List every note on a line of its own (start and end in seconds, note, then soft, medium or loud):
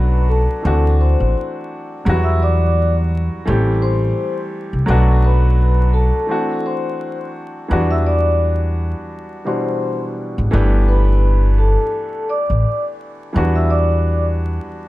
0.00 0.45 B1 loud
0.00 0.61 F#3 medium
0.00 0.61 A3 medium
0.00 0.62 B3 medium
0.00 0.62 D4 medium
0.00 0.63 F#4 medium
0.00 0.25 B4 medium
0.00 0.25 B5 medium
0.29 0.96 A4 medium
0.29 0.96 A5 medium
0.62 1.14 D2 loud
0.62 2.02 E3 medium
0.62 2.02 A3 medium
0.62 2.03 C4 medium
0.62 2.03 D4 medium
0.67 2.04 F#4 medium
1.01 1.52 C5 medium
1.01 1.53 C6 medium
1.20 1.34 A1 medium
2.05 3.28 E2 loud
2.05 3.44 F#3 medium
2.05 3.44 G3 medium
2.05 3.45 B3 medium
2.05 3.45 E4 medium
2.09 3.46 F#4 medium
2.23 2.38 E5 medium
2.23 2.39 E6 medium
2.43 2.94 D5 medium
2.43 2.94 D6 medium
3.45 4.10 A1 loud
3.45 4.85 E3 medium
3.45 4.86 G3 medium
3.45 4.85 A3 medium
3.45 4.86 C4 medium
3.50 4.87 G4 medium
3.82 4.34 C5 medium
3.82 4.35 C6 medium
4.73 4.86 C2 medium
4.86 6.10 B1 loud
4.86 6.25 F#3 medium
4.86 6.26 A3 medium
4.86 6.26 B3 medium
4.86 6.27 D4 medium
4.90 6.28 F#4 medium
5.24 5.90 B4 medium
5.24 5.91 B5 medium
5.93 6.60 A4 medium
5.93 6.61 A5 medium
6.27 7.66 E3 medium
6.27 7.67 A3 medium
6.27 7.68 C4 medium
6.27 7.68 D4 medium
6.31 7.69 F#4 medium
6.66 7.17 C5 medium
6.66 7.18 C6 medium
7.68 8.92 E2 loud
7.68 9.42 E3 medium
7.68 7.77 F#3 soft
7.68 9.43 B3 medium
7.68 9.44 D4 medium
7.73 9.44 G3 medium
7.73 9.45 F#4 medium
7.91 8.04 E5 medium
7.91 8.05 E6 medium
8.06 8.58 D5 medium
8.06 8.58 D6 medium
9.45 10.52 B2 soft
9.45 10.49 E3 medium
9.45 10.52 G3 medium
9.45 10.53 D4 soft
9.45 10.53 F#4 medium
9.45 9.99 C5 medium
9.45 9.99 C6 medium
10.38 10.51 G#1 medium
10.51 11.75 G1 loud
10.51 13.30 E3 medium
10.51 13.31 A3 medium
10.51 13.31 B3 medium
10.51 13.32 D4 medium
10.55 13.32 G4 medium
10.89 11.55 B4 medium
10.89 11.55 B5 medium
11.59 12.25 A4 medium
11.59 12.25 A5 medium
12.29 12.81 D5 medium
12.29 12.82 D6 medium
12.50 12.63 A1 medium
13.33 14.57 E2 loud
13.33 14.88 E3 medium
13.33 13.42 F#3 soft
13.33 14.88 B3 medium
13.33 14.88 D4 medium
13.37 14.88 G3 medium
13.37 14.88 F#4 medium
13.55 13.69 E5 medium
13.55 13.69 E6 medium
13.70 14.22 D5 medium
13.70 14.23 D6 medium